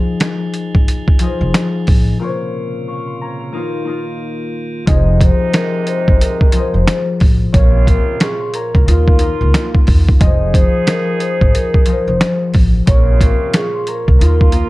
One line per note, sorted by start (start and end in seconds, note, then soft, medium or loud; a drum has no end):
0.00 1.18 F3 medium
0.00 2.18 F3 medium
0.00 2.18 D#4 medium
0.00 1.20 F4 medium
0.00 1.21 G#4 medium
0.00 2.18 G#4 medium
0.00 1.22 C5 medium
0.00 1.23 D#5 medium
0.20 snare loud
0.20 snare medium
0.20 closed hi-hat medium
0.54 closed hi-hat medium
0.75 0.85 G#1 medium
0.75 kick medium
0.88 closed hi-hat loud
1.08 kick medium
1.19 2.26 F3 medium
1.19 1.83 F4 medium
1.19 1.84 G#4 medium
1.19 1.84 C5 medium
1.19 1.85 D#5 loud
1.19 closed hi-hat medium
1.41 1.51 F1 medium
1.54 snare loud
1.54 snare medium
1.54 closed hi-hat medium
1.87 2.14 A1 medium
1.87 kick loud
1.87 open hi-hat medium
2.19 3.59 A#2 medium
2.19 3.53 C3 medium
2.19 3.53 C#3 medium
2.19 3.52 A#3 medium
2.19 4.85 A#3 medium
2.19 3.56 F4 medium
2.19 2.88 C5 medium
2.19 2.89 C#5 loud
2.88 3.40 F5 medium
2.88 3.13 C#6 medium
3.07 3.28 C6 medium
3.21 4.95 C#5 medium
3.21 4.61 A#5 medium
3.40 5.07 F5 medium
3.52 4.86 D#3 medium
3.52 3.81 A#3 loud
3.52 3.82 D#4 medium
3.52 4.86 F4 medium
3.52 3.83 F4 loud
3.85 4.49 A#3 medium
3.85 4.50 D#4 medium
3.85 4.51 F4 loud
4.86 5.29 F1 loud
4.86 7.17 C3 medium
4.86 6.51 F3 medium
4.86 7.17 G#3 medium
4.86 7.17 D#4 loud
4.86 6.53 F4 medium
4.86 6.54 G#4 medium
4.86 6.55 C5 medium
4.86 5.18 D#5 loud
4.86 6.56 D#5 loud
4.86 kick loud
4.86 closed hi-hat medium
5.21 5.51 C5 medium
5.21 kick loud
5.21 closed hi-hat medium
5.54 snare loud
5.54 snare medium
5.54 closed hi-hat loud
5.87 6.18 C5 medium
5.87 closed hi-hat medium
6.08 6.18 G#1 medium
6.08 kick medium
6.21 6.71 A#4 medium
6.21 closed hi-hat loud
6.41 kick medium
6.52 7.59 F3 medium
6.52 7.17 F4 medium
6.52 7.17 G#4 medium
6.52 7.18 C5 medium
6.52 7.18 D#5 loud
6.52 closed hi-hat medium
6.74 6.85 F1 medium
6.74 7.04 C5 medium
6.88 snare loud
6.88 snare medium
6.88 closed hi-hat medium
7.20 7.47 A1 medium
7.20 kick loud
7.20 open hi-hat medium
7.52 7.96 A#1 loud
7.52 8.93 A#2 medium
7.52 8.52 C3 medium
7.52 8.52 C#3 medium
7.52 8.86 A#3 medium
7.52 8.52 F4 loud
7.52 8.89 F4 medium
7.52 8.21 A#4 medium
7.52 7.84 C#5 loud
7.52 8.22 C#5 loud
7.52 kick loud
7.52 closed hi-hat medium
7.87 8.18 A#4 medium
7.87 kick loud
7.87 closed hi-hat medium
8.20 8.51 G#4 medium
8.20 8.73 F5 medium
8.20 8.47 C#6 medium
8.20 snare loud
8.20 snare medium
8.20 closed hi-hat medium
8.41 8.61 C6 medium
8.54 9.50 A#4 medium
8.54 10.29 C#5 medium
8.54 9.95 A#5 medium
8.54 closed hi-hat medium
8.74 8.85 C2 medium
8.74 10.40 F5 medium
8.74 kick medium
8.86 9.29 D#2 loud
8.86 9.15 A#3 loud
8.86 9.86 A#3 medium
8.86 9.16 D#4 medium
8.86 9.86 F4 medium
8.86 9.17 F4 loud
8.86 closed hi-hat loud
9.08 kick medium
9.19 9.83 A#3 medium
9.19 9.84 D#4 medium
9.19 9.85 F4 loud
9.19 closed hi-hat medium
9.41 9.51 C#2 medium
9.54 snare loud
9.54 snare medium
9.54 closed hi-hat loud
9.75 kick medium
9.87 10.14 E2 loud
9.87 kick loud
9.87 open hi-hat medium
10.09 kick loud
10.20 10.62 F1 loud
10.20 11.84 F3 medium
10.20 12.50 F3 medium
10.20 12.50 D#4 medium
10.20 11.86 F4 medium
10.20 12.50 G#4 loud
10.20 11.87 G#4 medium
10.20 11.88 C5 medium
10.20 10.51 D#5 loud
10.20 11.89 D#5 loud
10.20 kick loud
10.20 closed hi-hat medium
10.54 10.84 C5 medium
10.54 kick loud
10.54 closed hi-hat medium
10.87 11.18 A#4 medium
10.87 snare loud
10.87 snare medium
10.87 closed hi-hat medium
11.20 11.51 C5 medium
11.20 closed hi-hat medium
11.41 11.52 G#1 medium
11.41 kick medium
11.54 12.04 A#4 medium
11.54 closed hi-hat loud
11.74 kick medium
11.86 12.93 F3 medium
11.86 12.50 F4 medium
11.86 12.51 G#4 medium
11.86 12.51 C5 medium
11.86 12.52 D#5 loud
11.86 closed hi-hat medium
12.08 12.18 F1 medium
12.08 12.38 C5 medium
12.21 snare loud
12.21 snare medium
12.21 closed hi-hat loud
12.54 12.80 A1 medium
12.54 kick loud
12.54 open hi-hat medium
12.86 13.29 A#1 loud
12.86 14.26 A#2 medium
12.86 13.86 C3 medium
12.86 13.86 C#3 medium
12.86 14.18 A#3 medium
12.86 14.22 F4 medium
12.86 13.86 F4 loud
12.86 13.55 A#4 medium
12.86 13.18 C#5 loud
12.86 13.55 C#5 loud
12.86 kick loud
12.86 closed hi-hat medium
13.21 13.51 A#4 medium
13.21 kick loud
13.21 closed hi-hat medium
13.54 13.84 G#4 medium
13.54 14.06 F5 medium
13.54 13.80 C#6 medium
13.54 snare loud
13.54 snare medium
13.54 closed hi-hat loud
13.74 13.95 C6 medium
13.87 14.69 A#4 medium
13.87 14.69 C#5 medium
13.87 14.69 A#5 medium
13.87 closed hi-hat medium
14.07 14.18 C2 loud
14.07 14.69 F5 medium
14.07 kick medium
14.19 14.62 D#2 loud
14.19 14.48 A#3 loud
14.19 14.69 A#3 medium
14.19 14.49 D#4 medium
14.19 14.69 F4 loud
14.19 14.50 F4 loud
14.19 closed hi-hat loud
14.41 kick loud
14.52 14.69 A#3 medium
14.52 14.69 D#4 medium
14.52 14.69 F4 loud
14.52 closed hi-hat medium